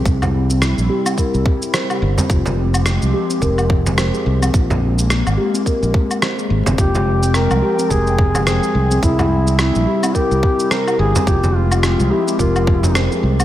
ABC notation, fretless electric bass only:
X:1
M:4/4
L:1/16
Q:"Swing 16ths" 1/4=107
K:Fm
V:1 name="Fretless electric bass" clef=bass
C,,4- C,, B,,, z3 C,, z4 G,,, z | F,,,4- F,,, C,, z2 F,,,4- F,,, z C,,2 | B,,,4- B,,, A,,, z3 B,,, z4 A,,, F,,, | F,,,4- F,,, C,, z2 F,,,4- F,,, z C,,2 |
C,,4- C,, B,,, z3 C,, z4 G,,, z | F,,,4- F,,, C,, z2 F,,,4- F,,, z C,,2 |]